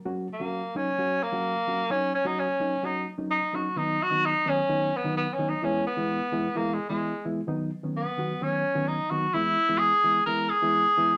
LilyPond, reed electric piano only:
\new Staff \with { instrumentName = "Reed electric piano" } { \time 4/4 \key fis \mixolydian \tempo 4 = 129 <fis ais cis' fis'>8 r16 <fis ais cis' fis'>8 r16 <fis ais cis' dis'>16 r16 <fis ais cis' fis'>8 r16 <fis ais cis' fis'>8 r16 <fis ais cis' fis'>16 r16 | <fis ais cis' dis'>8 r16 <fis ais cis' fis'>8 r16 <fis ais cis' dis'>16 r16 <fis ais cis' fis'>8 r16 <fis ais cis' dis'>8 r16 <fis ais cis' dis'>16 r16 | <dis fis b dis'>8 r16 <dis fis b dis'>8 r16 <dis fis b cis'>16 r16 <dis fis b dis'>8 r16 <dis fis b dis'>8 r16 <dis fis b dis'>16 r16 | <e gis b e'>8 r16 <e gis b e'>8 r16 <e gis b e'>16 r16 <e gis b e'>8 r16 <e gis b e'>8 r16 <e gis b e'>16 r16 |
<dis fis b dis'>8 r16 <dis fis b cis'>8 r16 <dis fis b fis'>16 r16 <dis fis b cis'>8 r16 <dis fis b cis'>8 r16 <dis fis b dis'>16 r16 | <e gis b e'>8 r16 <e gis b e'>8 r16 <e gis b e'>16 r16 <e gis b e'>8 r16 <e gis b e'>8 r16 <e gis b e'>16 r16 | }